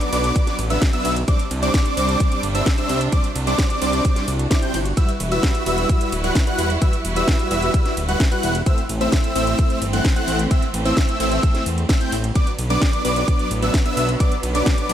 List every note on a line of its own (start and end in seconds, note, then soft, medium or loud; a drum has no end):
0.00 1.24 D3 medium
0.00 1.24 F#3 medium
0.00 1.24 B3 medium
0.00 closed hi-hat soft
0.12 0.32 B1 loud
0.12 0.56 F#3 medium
0.12 0.56 B3 medium
0.12 0.56 D4 medium
0.12 0.56 B4 medium
0.12 0.56 D5 loud
0.12 0.56 D6 loud
0.12 open hi-hat loud
0.12 ride medium
0.24 closed hi-hat soft
0.36 kick loud
0.36 closed hi-hat medium
0.47 snare soft
0.47 closed hi-hat soft
0.59 0.78 A1 loud
0.59 open hi-hat loud
0.59 ride medium
0.70 0.84 F#3 medium
0.70 0.84 B3 medium
0.70 0.84 D4 medium
0.70 0.84 B4 medium
0.70 0.84 E5 medium
0.70 0.84 E6 medium
0.70 closed hi-hat soft
0.81 kick loud
0.81 snare loud
0.81 closed hi-hat medium
0.93 1.15 F#3 loud
0.93 1.15 B3 medium
0.93 1.15 D4 medium
0.93 1.15 B4 medium
0.93 1.15 E5 loud
0.93 1.15 E6 loud
0.93 closed hi-hat soft
1.05 1.24 B1 loud
1.05 open hi-hat loud
1.05 ride medium
1.16 closed hi-hat soft
1.28 4.93 C3 medium
1.28 1.42 G3 medium
1.28 3.11 G3 medium
1.28 1.42 C4 medium
1.28 1.42 D4 medium
1.28 4.94 D4 loud
1.28 1.42 C5 medium
1.28 1.42 D5 medium
1.28 1.42 D6 loud
1.28 kick loud
1.28 closed hi-hat medium
1.39 closed hi-hat soft
1.51 1.70 C2 loud
1.51 open hi-hat loud
1.51 ride medium
1.63 1.94 G3 loud
1.63 1.94 C4 medium
1.63 1.94 D4 medium
1.63 1.94 C5 medium
1.63 1.94 D5 loud
1.63 1.94 D6 loud
1.63 closed hi-hat soft
1.74 kick loud
1.74 snare loud
1.74 closed hi-hat medium
1.86 closed hi-hat soft
1.97 2.17 C2 loud
1.97 2.41 G3 loud
1.97 2.41 C4 medium
1.97 2.41 D4 medium
1.97 2.41 C5 medium
1.97 2.41 D5 loud
1.97 2.41 D6 loud
1.97 open hi-hat loud
1.97 ride medium
2.09 closed hi-hat soft
2.20 kick loud
2.20 closed hi-hat medium
2.32 closed hi-hat soft
2.43 2.63 G1 loud
2.43 open hi-hat loud
2.43 ride medium
2.55 2.68 G3 medium
2.55 2.69 C4 medium
2.55 2.69 D4 medium
2.55 2.69 C5 medium
2.55 2.69 E5 medium
2.55 2.69 E6 medium
2.55 closed hi-hat soft
2.66 kick loud
2.66 snare loud
2.66 closed hi-hat medium
2.78 3.00 G3 medium
2.78 3.00 C4 medium
2.78 3.00 D4 medium
2.78 3.00 C5 medium
2.78 3.00 E5 loud
2.78 3.00 E6 loud
2.78 closed hi-hat soft
2.89 3.09 C2 loud
2.89 open hi-hat loud
2.89 ride medium
3.01 closed hi-hat soft
3.12 3.26 G3 medium
3.12 3.26 C4 medium
3.12 3.26 D4 medium
3.12 8.62 F#4 medium
3.12 3.26 C5 medium
3.12 3.26 D5 medium
3.12 3.26 D6 loud
3.12 kick loud
3.12 closed hi-hat medium
3.24 closed hi-hat soft
3.36 3.55 C2 loud
3.36 open hi-hat loud
3.36 ride medium
3.47 3.79 G3 medium
3.47 3.79 C4 medium
3.47 3.79 D4 medium
3.47 3.79 C5 medium
3.47 3.79 D5 loud
3.47 3.79 D6 loud
3.47 closed hi-hat soft
3.58 kick loud
3.58 snare loud
3.58 closed hi-hat medium
3.70 closed hi-hat soft
3.82 4.01 C2 medium
3.82 4.25 G3 loud
3.82 4.25 C4 medium
3.82 4.25 D4 medium
3.82 4.25 C5 medium
3.82 4.25 D5 loud
3.82 4.25 D6 loud
3.82 open hi-hat loud
3.82 ride medium
3.93 closed hi-hat soft
4.05 kick loud
4.05 closed hi-hat medium
4.05 swell medium
4.16 snare soft
4.16 closed hi-hat soft
4.28 4.47 C2 medium
4.28 open hi-hat loud
4.28 ride medium
4.39 closed hi-hat soft
4.51 4.60 G3 medium
4.51 4.60 C4 medium
4.51 4.60 D4 medium
4.51 4.60 C5 medium
4.51 4.60 D5 medium
4.51 4.60 D6 medium
4.51 kick loud
4.51 snare loud
4.51 closed hi-hat medium
4.62 4.76 G3 medium
4.62 4.76 C4 medium
4.62 4.76 D4 medium
4.62 4.76 C5 medium
4.62 4.76 G5 medium
4.62 4.76 G6 medium
4.62 closed hi-hat soft
4.74 4.93 G1 loud
4.74 open hi-hat loud
4.74 ride medium
4.86 closed hi-hat soft
4.97 5.11 G3 medium
4.97 8.63 G3 medium
4.97 8.63 E4 medium
4.97 5.11 E4 medium
4.97 5.11 F#4 medium
4.97 5.11 B4 medium
4.97 5.11 E5 medium
4.97 5.11 E6 medium
4.97 kick loud
4.97 closed hi-hat medium
5.09 closed hi-hat soft
5.20 5.40 E1 loud
5.20 open hi-hat loud
5.20 ride medium
5.32 5.64 G3 medium
5.32 5.64 E4 medium
5.32 5.64 F#4 medium
5.32 5.64 B4 medium
5.32 5.64 E5 loud
5.32 5.64 E6 loud
5.32 closed hi-hat soft
5.43 kick loud
5.43 snare loud
5.43 closed hi-hat medium
5.55 closed hi-hat soft
5.66 5.86 E1 medium
5.66 6.10 G3 loud
5.66 6.10 E4 medium
5.66 6.10 F#4 medium
5.66 6.10 B4 medium
5.66 6.10 E5 loud
5.66 6.10 E6 loud
5.66 open hi-hat loud
5.66 ride medium
5.78 closed hi-hat soft
5.89 kick loud
5.89 closed hi-hat medium
6.01 closed hi-hat soft
6.12 6.32 D1 loud
6.12 open hi-hat loud
6.12 ride medium
6.24 6.38 G3 medium
6.24 6.38 E4 medium
6.24 6.38 F#4 medium
6.24 6.38 B4 medium
6.24 6.38 F#5 medium
6.24 6.38 F#6 medium
6.24 closed hi-hat soft
6.35 kick loud
6.35 snare loud
6.35 closed hi-hat medium
6.47 6.69 G3 medium
6.47 6.69 E4 medium
6.47 6.69 F#4 medium
6.47 6.69 B4 medium
6.47 6.69 F#5 loud
6.47 6.69 F#6 loud
6.47 closed hi-hat soft
6.59 6.78 E1 loud
6.59 open hi-hat loud
6.59 ride medium
6.70 closed hi-hat soft
6.82 6.95 G3 medium
6.82 6.95 E4 medium
6.82 6.95 F#4 medium
6.82 6.95 B4 medium
6.82 6.95 E5 loud
6.82 6.95 E6 medium
6.82 kick loud
6.82 closed hi-hat medium
6.93 closed hi-hat soft
7.05 7.24 E1 loud
7.05 open hi-hat loud
7.05 ride medium
7.16 7.48 G3 medium
7.16 7.48 E4 medium
7.16 7.48 F#4 medium
7.16 7.48 B4 medium
7.16 7.48 E5 loud
7.16 7.48 E6 loud
7.16 closed hi-hat soft
7.28 kick loud
7.28 snare loud
7.28 closed hi-hat medium
7.39 closed hi-hat soft
7.51 7.70 E1 medium
7.51 7.94 G3 medium
7.51 7.94 E4 medium
7.51 7.94 F#4 medium
7.51 7.94 B4 medium
7.51 7.94 E5 loud
7.51 7.94 E6 loud
7.51 open hi-hat loud
7.51 ride medium
7.62 closed hi-hat soft
7.74 kick loud
7.74 closed hi-hat medium
7.85 snare soft
7.85 closed hi-hat soft
7.97 8.16 D1 loud
7.97 open hi-hat loud
7.97 ride medium
8.09 8.22 G3 medium
8.09 8.22 E4 medium
8.09 8.22 F#4 medium
8.09 8.22 B4 medium
8.09 8.22 F#5 medium
8.09 8.22 F#6 medium
8.09 closed hi-hat soft
8.20 kick loud
8.20 snare loud
8.20 closed hi-hat medium
8.32 8.54 G3 medium
8.32 8.54 E4 medium
8.32 8.54 F#4 medium
8.32 8.54 B4 medium
8.32 8.54 F#5 loud
8.32 8.54 F#6 loud
8.32 closed hi-hat soft
8.43 8.63 E1 loud
8.43 open hi-hat loud
8.43 ride medium
8.55 closed hi-hat soft
8.66 12.32 E3 medium
8.66 8.80 A3 medium
8.66 12.32 A3 medium
8.66 8.80 C4 medium
8.66 12.32 C4 loud
8.66 8.80 E4 medium
8.66 8.80 C5 medium
8.66 8.80 E5 medium
8.66 8.80 E6 loud
8.66 kick loud
8.66 closed hi-hat medium
8.78 closed hi-hat soft
8.89 9.09 A1 loud
8.89 open hi-hat loud
8.89 ride medium
9.01 9.33 A3 medium
9.01 9.33 C4 medium
9.01 9.33 E4 medium
9.01 9.33 C5 medium
9.01 9.33 E5 loud
9.01 9.33 E6 loud
9.01 closed hi-hat soft
9.12 kick loud
9.12 snare loud
9.12 closed hi-hat medium
9.24 closed hi-hat soft
9.35 9.55 A1 medium
9.35 9.79 A3 loud
9.35 9.79 C4 medium
9.35 9.79 E4 medium
9.35 9.79 C5 medium
9.35 9.79 E5 loud
9.35 9.79 E6 loud
9.35 open hi-hat loud
9.35 ride medium
9.47 closed hi-hat soft
9.59 kick loud
9.59 closed hi-hat medium
9.70 closed hi-hat soft
9.82 10.01 G1 loud
9.82 open hi-hat loud
9.82 ride medium
9.93 10.07 A3 medium
9.93 10.07 C4 medium
9.93 10.07 E4 medium
9.93 10.07 C5 medium
9.93 10.07 F#5 medium
9.93 10.07 F#6 medium
9.93 closed hi-hat soft
10.05 kick loud
10.05 snare loud
10.05 closed hi-hat medium
10.16 10.38 A3 medium
10.16 10.38 C4 medium
10.16 10.38 E4 medium
10.16 10.38 C5 medium
10.16 10.38 F#5 loud
10.16 10.38 F#6 loud
10.16 closed hi-hat soft
10.28 10.47 A1 loud
10.28 open hi-hat loud
10.28 ride medium
10.39 closed hi-hat soft
10.51 10.65 A3 medium
10.51 10.65 C4 medium
10.51 10.65 E4 medium
10.51 10.65 C5 medium
10.51 10.65 E5 loud
10.51 10.65 E6 loud
10.51 kick loud
10.51 closed hi-hat medium
10.62 closed hi-hat soft
10.74 10.93 A1 loud
10.74 open hi-hat loud
10.74 ride medium
10.85 11.17 A3 medium
10.85 11.17 C4 medium
10.85 11.17 E4 medium
10.85 11.17 C5 medium
10.85 11.17 E5 loud
10.85 11.17 E6 loud
10.85 closed hi-hat soft
10.97 kick loud
10.97 snare loud
10.97 closed hi-hat medium
11.09 closed hi-hat soft
11.20 11.39 A1 medium
11.20 11.63 A3 loud
11.20 11.63 C4 medium
11.20 11.63 E4 medium
11.20 11.63 C5 medium
11.20 11.63 E5 loud
11.20 11.64 E6 loud
11.20 open hi-hat loud
11.20 ride medium
11.32 closed hi-hat soft
11.43 kick loud
11.43 closed hi-hat medium
11.54 snare soft
11.54 closed hi-hat soft
11.66 11.86 E2 medium
11.66 open hi-hat loud
11.66 ride medium
11.78 closed hi-hat soft
11.89 11.98 A3 medium
11.89 11.98 C4 medium
11.89 11.98 E4 medium
11.89 11.98 C5 medium
11.89 11.98 E5 medium
11.89 11.98 E6 medium
11.89 kick loud
11.89 snare loud
11.89 closed hi-hat medium
12.01 12.15 A3 medium
12.01 12.15 C4 medium
12.01 12.15 E4 medium
12.01 12.15 C5 medium
12.01 12.15 G5 medium
12.01 12.15 G6 medium
12.01 closed hi-hat soft
12.12 12.32 A1 loud
12.12 open hi-hat loud
12.12 ride medium
12.24 closed hi-hat soft
12.35 14.93 D3 medium
12.35 14.93 F#3 medium
12.35 12.49 F#3 medium
12.35 14.93 B3 medium
12.35 12.49 B3 medium
12.35 12.49 D4 medium
12.35 12.49 B4 medium
12.35 12.49 D5 medium
12.35 12.49 D6 loud
12.35 kick loud
12.35 closed hi-hat medium
12.47 closed hi-hat soft
12.59 12.78 B1 loud
12.59 open hi-hat loud
12.59 ride medium
12.70 13.02 F#3 medium
12.70 13.02 B3 medium
12.70 13.02 D4 medium
12.70 13.02 B4 medium
12.70 13.02 D5 loud
12.70 13.02 D6 loud
12.70 closed hi-hat soft
12.81 kick loud
12.81 snare loud
12.81 closed hi-hat medium
12.93 closed hi-hat soft
13.05 13.24 B1 medium
13.05 13.48 F#3 loud
13.05 13.48 B3 medium
13.05 13.48 D4 medium
13.05 13.48 B4 medium
13.05 13.48 D5 loud
13.05 13.48 D6 loud
13.05 open hi-hat loud
13.05 ride medium
13.16 closed hi-hat soft
13.28 kick loud
13.28 closed hi-hat medium
13.39 closed hi-hat soft
13.51 13.70 A1 loud
13.51 open hi-hat loud
13.51 ride medium
13.62 13.76 F#3 medium
13.62 13.76 B3 medium
13.62 13.76 D4 medium
13.62 13.76 B4 medium
13.62 13.76 E5 medium
13.62 13.76 E6 medium
13.62 closed hi-hat soft
13.74 kick loud
13.74 snare loud
13.74 closed hi-hat medium
13.85 14.07 F#3 medium
13.85 14.07 B3 medium
13.85 14.07 D4 medium
13.85 14.07 B4 medium
13.85 14.07 E5 loud
13.85 14.08 E6 loud
13.85 closed hi-hat soft
13.97 14.16 B1 loud
13.97 open hi-hat loud
13.97 ride medium
14.09 closed hi-hat soft
14.20 14.34 F#3 medium
14.20 14.34 B3 medium
14.20 14.34 D4 medium
14.20 14.34 B4 medium
14.20 14.34 D5 medium
14.20 14.34 D6 loud
14.20 kick loud
14.20 closed hi-hat medium
14.32 closed hi-hat soft
14.43 14.63 B1 loud
14.43 open hi-hat loud
14.43 ride medium
14.55 14.87 F#3 medium
14.55 14.87 B3 medium
14.55 14.87 D4 medium
14.55 14.87 B4 medium
14.55 14.87 D5 loud
14.55 14.87 D6 loud
14.55 closed hi-hat soft
14.66 kick loud
14.66 snare loud
14.66 closed hi-hat medium
14.78 closed hi-hat soft
14.89 14.93 B1 medium
14.89 14.93 F#3 loud
14.89 14.93 B3 medium
14.89 14.93 D4 medium
14.89 14.93 B4 medium
14.89 14.93 D5 loud
14.89 14.93 D6 loud
14.89 open hi-hat loud
14.89 ride medium